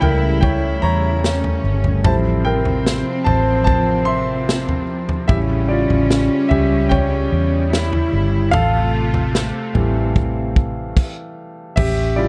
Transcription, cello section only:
0.00 1.20 E4 loud
1.24 2.05 C#4 loud
2.05 5.29 C4 loud
5.29 7.68 C#4 loud
7.73 8.53 E4 medium
8.53 9.34 F4 medium
9.35 10.97 C4 medium
11.78 12.28 C#4 loud

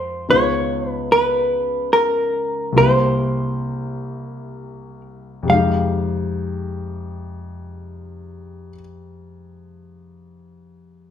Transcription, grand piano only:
0.00 0.25 F2 soft
0.00 0.26 F3 soft
0.00 0.28 G#3 soft
0.00 0.28 D#4 soft
0.00 0.30 G5 soft
0.29 2.75 C#2 soft
0.29 2.75 C#3 soft
0.29 2.75 B3 soft
0.29 2.75 D#4 soft
0.29 2.75 F4 soft
2.72 5.47 C2 soft
2.72 5.44 C3 soft
2.72 5.49 A#3 soft
2.72 5.49 E4 soft
2.78 5.50 G4 medium
5.43 8.69 F2 medium
5.43 8.72 C3 soft
5.49 8.75 G#3 soft
5.49 8.78 D#4 soft
5.55 8.81 G4 medium

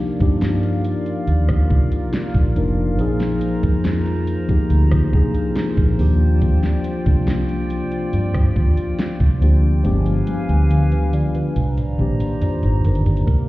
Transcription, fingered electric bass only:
0.21 0.93 G2 medium
1.28 1.64 D#2 loud
1.70 1.88 C2 medium
2.35 2.53 A#1 medium
2.56 2.99 F1 medium
2.99 3.35 A#1 loud
3.63 4.36 F2 medium
4.70 5.07 D2 loud
5.13 5.31 C2 medium
5.77 5.95 A#1 medium
5.99 6.71 D#2 medium
7.06 7.79 C2 medium
8.13 8.49 G2 medium
8.56 8.74 D#2 medium
9.20 9.42 C2 medium
9.42 9.86 D2 loud
9.85 10.21 G1 loud
10.49 11.21 D2 medium
11.56 11.92 C2 loud
11.99 12.17 A#1 medium
12.63 12.81 G#1 medium
12.85 13.21 G1 medium
13.28 13.49 C2 loud

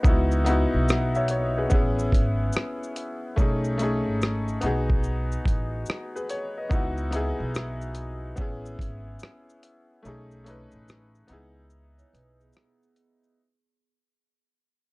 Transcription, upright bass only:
0.05 0.64 C#2 loud
0.74 1.68 B1 medium
1.72 2.07 A1 medium
2.13 2.49 G#1 medium
3.38 4.07 B1 loud
4.07 4.55 G#1 medium
4.63 5.35 B1 medium
5.46 5.82 A1 medium
6.71 7.30 C#2 medium
7.40 8.34 B1 medium
8.38 8.74 A1 medium
8.79 9.15 G#1 medium
10.05 10.64 B1 loud
10.73 11.22 A1 medium
11.30 12.01 C#2 loud
12.13 12.49 B1 medium

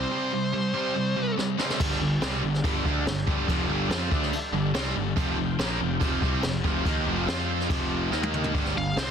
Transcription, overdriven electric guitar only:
0.00 0.10 C4 medium
0.11 0.31 C3 medium
0.11 0.31 G3 medium
0.11 0.31 C4 loud
0.32 0.51 C3 medium
0.32 0.51 G3 medium
0.53 0.72 C3 medium
0.53 0.72 G3 medium
0.73 0.94 C3 medium
0.73 0.94 G3 medium
0.73 0.94 C4 medium
0.95 1.14 C3 medium
0.95 1.15 G3 medium
1.16 1.35 C3 medium
1.16 1.35 G3 medium
1.38 1.56 C3 medium
1.38 1.57 G3 medium
1.58 1.78 C3 medium
1.58 1.78 G3 medium
1.58 1.79 C4 medium
1.79 1.99 G2 loud
1.79 2.00 D3 medium
1.79 2.00 G3 loud
2.00 2.17 G2 medium
2.00 2.18 D3 medium
2.22 2.42 C3 medium
2.22 2.42 G3 medium
2.22 2.43 C4 medium
2.43 2.60 G2 medium
2.43 2.60 D3 medium
2.64 2.84 G2 medium
2.64 2.83 D3 medium
2.64 2.84 G3 loud
2.84 3.05 D3 medium
2.84 3.05 A3 medium
2.84 3.06 D4 loud
3.06 3.23 G2 medium
3.06 3.23 D3 medium
3.27 3.46 G2 medium
3.27 3.47 D3 medium
3.27 3.48 G3 loud
3.47 3.67 F2 loud
3.47 3.68 C3 loud
3.47 3.68 F3 loud
3.68 3.89 G2 medium
3.68 3.89 D3 medium
3.68 3.89 G3 medium
3.89 4.10 F3 medium
3.89 4.10 C4 medium
3.89 4.11 F4 medium
4.10 4.31 D3 medium
4.10 4.31 A3 medium
4.10 4.32 D4 loud
4.53 4.70 G2 medium
4.53 4.70 D3 medium
4.74 4.94 C3 medium
4.74 4.95 G3 loud
4.74 4.95 C4 loud
4.95 5.12 G2 medium
4.95 5.12 D3 medium
5.16 5.37 F2 loud
5.16 5.37 C3 loud
5.16 5.37 F3 loud
5.38 5.55 F2 medium
5.38 5.55 C3 medium
5.59 5.79 A#2 medium
5.59 5.79 F3 loud
5.59 5.80 A#3 loud
5.79 5.96 F2 medium
5.79 5.96 C3 medium
6.00 6.21 F2 medium
6.00 6.21 C3 loud
6.00 6.22 F3 medium
6.22 6.42 C3 loud
6.22 6.43 G3 medium
6.22 6.43 C4 loud
6.43 6.60 F2 medium
6.43 6.60 C3 medium
6.64 6.85 F2 medium
6.64 6.85 C3 medium
6.64 6.85 F3 loud
6.85 7.06 D#3 medium
6.85 7.06 A#3 loud
6.85 7.06 D#4 loud
7.06 7.27 F2 medium
7.06 7.26 C3 loud
7.06 7.25 F3 loud
7.27 7.69 F3 medium
7.27 7.69 C4 loud
7.27 7.70 F4 medium
7.69 8.11 F2 medium
7.69 8.11 C3 loud
7.69 8.12 F3 medium
8.11 8.54 D#3 medium
8.11 8.54 A#3 medium
8.11 8.54 D#4 medium
8.53 8.74 G2 medium
8.53 8.74 D3 loud
8.53 8.75 G3 loud
8.75 8.92 G2 medium
8.75 8.92 D3 medium
8.97 9.11 C3 medium
8.97 9.11 G3 medium
8.97 9.11 C4 medium

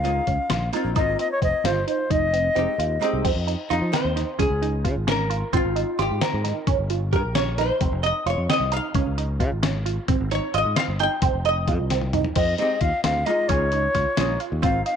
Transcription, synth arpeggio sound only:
0.04 0.19 C#4 medium
0.27 0.42 C#4 medium
0.50 0.65 F4 medium
0.73 0.88 D#4 medium
0.96 1.11 D#4 medium
1.19 1.34 C4 medium
1.42 1.56 C4 medium
1.65 1.79 F4 medium
1.87 2.02 D#4 medium
2.10 2.25 D#4 medium
2.33 2.48 C4 medium
2.56 2.70 C4 medium
2.79 2.93 F4 medium
3.02 3.16 D#4 medium
3.25 3.39 C4 medium
3.47 3.62 D#4 medium
3.70 3.85 F4 medium
3.93 4.08 C4 medium
4.16 4.30 D#4 medium
4.39 4.53 C#4 medium
4.62 4.76 D#4 medium
4.84 4.99 F4 medium
5.07 5.22 C#4 medium
5.30 5.44 F4 medium
5.53 5.67 C4 loud
5.76 5.90 D#4 medium
5.99 6.13 F4 medium
6.21 6.36 C4 medium
6.44 6.58 D#4 medium
6.67 6.81 C#4 loud
6.90 7.04 F4 medium
7.13 7.27 G4 medium
7.36 7.50 C#4 medium
7.59 7.73 D#4 medium
7.81 7.95 C4 medium
8.04 8.18 D#4 medium
8.26 8.41 F4 medium
8.49 8.63 C4 medium
8.72 8.86 D#4 medium
8.95 9.09 C#4 medium
9.18 9.32 D#4 medium
9.40 9.54 F4 medium
9.63 9.77 C#4 medium
9.86 10.00 F4 medium
10.08 10.23 C4 loud
10.32 10.46 D#4 medium
10.54 10.68 F4 medium
10.77 10.91 C4 medium
11.00 11.14 D#4 medium
11.23 11.37 C4 loud
11.45 11.59 D#4 medium
11.68 11.82 F4 medium
11.91 12.05 C4 medium
12.14 12.28 D#4 medium
12.36 12.50 C4 medium
12.59 12.73 D#4 medium
12.81 12.95 F4 medium
13.04 13.19 C4 medium
13.27 13.41 D#4 medium
13.49 13.64 C#4 loud
13.73 13.87 D#4 medium
13.95 14.09 F4 medium
14.17 14.32 C#4 medium
14.40 14.54 F4 medium
14.63 14.77 C4 medium
14.86 14.96 D#4 medium

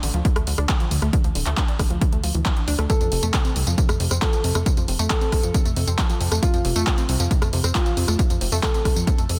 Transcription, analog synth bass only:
0.03 0.11 A1 loud
0.14 0.22 D2 medium
0.36 0.44 D2 medium
0.47 0.56 D2 loud
0.58 0.67 D2 medium
0.91 1.00 D2 medium
1.02 1.11 D2 medium
1.24 1.33 D2 medium
1.35 1.44 D1 loud
1.46 1.55 D2 medium
1.79 1.88 A1 loud
1.90 1.99 D2 medium
2.13 2.21 D2 medium
2.24 2.32 D2 medium
2.35 2.43 D2 medium
2.68 2.76 D2 medium
2.79 2.87 D2 medium
3.01 3.09 F2 medium
3.12 3.20 F1 loud
3.23 3.31 F2 medium
3.56 3.64 C2 loud
3.67 3.75 F2 medium
3.89 3.97 F2 medium
4.00 4.08 F2 medium
4.11 4.19 F2 medium
4.44 4.53 F2 medium
4.55 4.64 F2 medium
4.77 4.86 F2 medium
4.88 4.97 F1 loud
4.99 5.08 F2 medium
5.32 5.41 C2 loud
5.43 5.52 F2 medium
5.65 5.74 F2 medium
5.76 5.85 F2 loud
5.87 5.96 F2 medium
6.21 6.29 F2 medium
6.32 6.40 F2 medium
6.54 6.62 F2 medium
6.65 6.73 F1 loud
6.76 6.84 F2 medium
7.09 7.17 C2 loud
7.20 7.28 F2 medium
7.42 7.50 F2 medium
7.53 7.61 F2 medium
7.64 7.72 F2 medium
7.97 8.06 F2 medium
8.08 8.17 F2 medium
8.30 8.39 F2 medium
8.41 8.50 F1 medium
8.52 8.61 F2 medium
8.85 8.94 C2 medium
8.96 9.05 F2 medium
9.18 9.27 F2 medium
9.29 9.38 F2 medium

